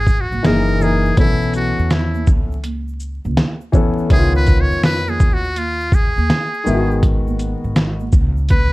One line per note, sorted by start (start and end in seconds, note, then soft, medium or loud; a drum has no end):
0.00 0.28 G#1 medium
0.00 0.22 G#4 medium
0.07 kick loud
0.07 shaker soft
0.21 0.47 F#4 medium
0.32 0.43 G#1 medium
0.32 high conga medium
0.32 shaker soft
0.43 1.09 F#1 loud
0.43 0.77 E3 medium
0.43 0.78 A#3 medium
0.43 0.79 D#4 medium
0.43 0.79 G#4 medium
0.43 0.84 A#4 loud
0.43 snare loud
0.43 closed hi-hat medium
0.43 shaker medium
0.68 shaker soft
0.80 1.14 E3 medium
0.80 1.15 A#3 medium
0.80 1.15 D#4 medium
0.80 1.19 G#4 medium
0.80 1.16 A#4 medium
0.80 low conga medium
0.80 shaker soft
0.80 shaker medium
1.05 shaker soft
1.16 1.71 B1 loud
1.16 1.25 D#3 medium
1.16 2.53 B3 medium
1.16 2.53 C#4 medium
1.16 1.53 E4 loud
1.16 2.54 A4 medium
1.16 kick loud
1.16 closed hi-hat medium
1.16 shaker medium
1.22 2.55 E3 medium
1.42 shaker soft
1.54 1.95 F#4 medium
1.54 closed hi-hat soft
1.54 low conga medium
1.54 shaker soft
1.79 2.28 E2 medium
1.79 shaker soft
1.91 2.29 E4 medium
1.91 snare loud
1.91 closed hi-hat medium
1.91 shaker soft
2.15 high conga medium
2.15 shaker soft
2.27 3.21 C#2 medium
2.27 kick medium
2.27 low conga soft
2.27 shaker medium
2.27 shaker soft
2.52 shaker soft
2.64 closed hi-hat medium
2.64 high conga soft
2.64 shaker medium
2.88 shaker soft
3.00 shaker soft
3.25 3.36 C#2 medium
3.25 high conga medium
3.25 shaker soft
3.37 snare loud
3.37 closed hi-hat medium
3.37 shaker medium
3.61 shaker soft
3.72 4.07 E3 medium
3.72 4.07 B3 medium
3.72 4.08 C#4 medium
3.72 4.09 A4 medium
3.72 kick medium
3.72 low conga medium
3.72 shaker soft
3.72 shaker medium
3.98 shaker soft
4.08 4.64 C#2 loud
4.08 5.45 D#3 medium
4.08 5.45 B3 medium
4.08 5.46 C#4 medium
4.08 4.20 E4 medium
4.08 4.34 G#4 loud
4.08 kick loud
4.08 closed hi-hat medium
4.08 shaker medium
4.18 5.50 F4 medium
4.35 4.62 B4 loud
4.35 shaker soft
4.47 kick medium
4.47 closed hi-hat soft
4.47 low conga medium
4.47 shaker soft
4.61 4.84 C#5 medium
4.71 5.20 F2 medium
4.71 shaker soft
4.83 5.11 B4 loud
4.83 snare loud
4.83 closed hi-hat medium
4.83 shaker soft
5.07 5.35 G#4 medium
5.07 high conga medium
5.07 shaker medium
5.20 6.13 D#2 medium
5.20 kick medium
5.20 low conga soft
5.20 shaker soft
5.20 shaker medium
5.33 5.60 F#4 medium
5.44 shaker soft
5.56 5.96 F4 medium
5.56 closed hi-hat medium
5.56 high conga soft
5.56 shaker medium
5.81 shaker soft
5.92 7.04 G#4 medium
5.92 kick loud
5.92 shaker soft
5.92 shaker medium
6.18 6.29 D#2 medium
6.18 high conga medium
6.18 shaker soft
6.30 snare loud
6.30 closed hi-hat medium
6.30 shaker medium
6.54 shaker soft
6.64 7.53 G#1 medium
6.64 8.01 D#3 medium
6.64 8.01 G#3 medium
6.64 8.02 B3 medium
6.64 6.75 E4 medium
6.64 low conga medium
6.64 shaker soft
6.64 shaker medium
6.74 8.06 F#4 medium
6.91 shaker soft
7.03 kick loud
7.03 closed hi-hat medium
7.03 shaker medium
7.27 high conga medium
7.27 shaker soft
7.39 closed hi-hat soft
7.39 shaker soft
7.64 8.07 G#1 medium
7.64 shaker soft
7.76 snare loud
7.76 closed hi-hat medium
7.76 shaker soft
8.00 high conga medium
8.00 shaker soft
8.12 8.73 C#2 medium
8.12 kick medium
8.12 high conga soft
8.12 low conga medium
8.12 shaker medium
8.12 shaker soft
8.37 shaker soft
8.49 8.73 B4 medium
8.49 kick medium
8.49 closed hi-hat medium
8.49 high conga soft
8.49 shaker medium